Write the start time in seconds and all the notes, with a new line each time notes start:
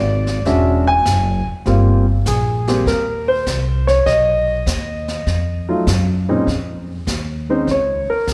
Already playing: G#1 D5
0.27 snare
0.45 E1 G#3 C#4 D4 F#4 E5, brush sweep, kick, snare
0.87 G#5
1.05 F#1, kick, snare, hi-hat pedal
1.47 muted upright bass stroke
1.66 G1 G3 A#3 C4 F4, brush sweep, kick, snare
2.26 A#1 G#4, kick, snare, hi-hat pedal
2.68 G3 A#3 C4 G4, snare
2.86 D#2 A#4, brush sweep, kick, snare
3.28 C5
3.46 C2, kick, snare, hi-hat pedal
3.87 C#5, snare
4.06 B1 D#5, brush sweep, kick, snare
4.66 D#2, kick, snare, hi-hat pedal
5.08 snare
5.26 F2, brush sweep, kick, snare
5.69 F#3 A3 D#4 F4
5.87 F#2, kick, snare, hi-hat pedal
6.29 A#2 G#3 C4 C#4 D#4
6.47 F2, brush sweep, kick, snare
7.07 D#2, kick, snare, hi-hat pedal
7.49 G#3 C4 C#4 D#4 C5
7.67 C#2, brush sweep, kick, snare
7.71 C#5
8.08 A#4, muted upright bass stroke
8.27 C2, kick, snare, hi-hat pedal